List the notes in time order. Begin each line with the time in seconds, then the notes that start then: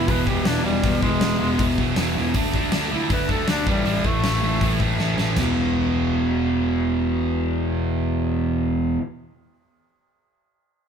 Already playing: E4
0.07 E1 E2 B2 E3 B4, kick, open hi-hat
0.27 E1 E2 B2 E3 G4, kick
0.45 E1 E2 B2 E3 D4, snare, open hi-hat
0.64 E1 E2 B2 E3 G3
0.83 E1 E2 B2 E3, kick, open hi-hat
1.02 E1 E2 B2 E3 G#3, kick
1.21 E1 E2 B2 E3, snare, open hi-hat
1.40 E1 E2 B2 E3
1.59 E1 E2 B2 E3, kick, open hi-hat
1.78 E1 E2 B2 E3, kick
1.96 E1 E2 B2 E3, snare, open hi-hat
2.16 E1 E2 B2 E3
2.34 D2 D3 A3 D4, kick, open hi-hat
2.53 D2 D3 A3 D4, kick
2.72 D2 D3 A3 D4, snare, open hi-hat
2.91 D2 D3 A3 D4 E4
3.10 D2 D3 A3 D4 B4, kick, open hi-hat
3.29 D2 D3 A3 D4 A4, kick
3.48 D2 D3 A3 D4, snare, open hi-hat
3.66 A1 A2 E3 G3 A3, kick
3.86 A1 A2 E3 A3, open hi-hat
4.05 A1 A2 E3 A3, kick
4.24 A1 A2 E3 A3, snare, open hi-hat
4.42 A1 A2 E3 A3
4.61 A1 A2 E3 A3, kick, open hi-hat
4.80 A1 A2 E3 A3, kick
4.99 A1 A2 E3 A3, snare
5.18 A1 A2 E3 A3, snare
5.36 E1 E2 B2, snare, floor tom, crash
5.41 E3